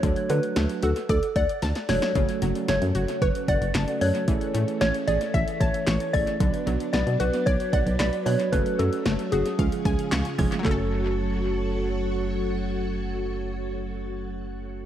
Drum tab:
HH |xxxxxxxxxxxxxxox|xxxxxxxxxxxxxxox|xxxxxxxxxxxxxxox|xxxxxxxxxxxxxxox|
CP |----------------|------------x---|------------x---|------------x---|
SD |----o-------oooo|----o-------o---|----o-------o---|----o-------o---|
BD |o-------o-o-----|o-------o-o-----|o-------o-o---o-|o-------o-o-----|

HH |xxxxxxxxxxxxxxox|----------------|----------------|
CP |------------x---|x---------------|----------------|
SD |----o-------o---|----------------|----------------|
BD |o-------o-o---o-|o---------------|----------------|